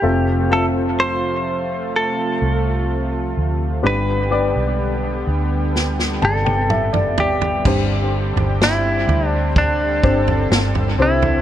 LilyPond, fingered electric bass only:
\new Staff \with { instrumentName = "Fingered electric bass" } { \clef bass \time 4/4 \key g \mixolydian \tempo 4 = 63 f,,2~ f,,8 c,4 d,8 | g,,8. b,,8. d,4 g,,4. | g,,8. g,,8. d,4 g,,8 g,,8 c,8 | }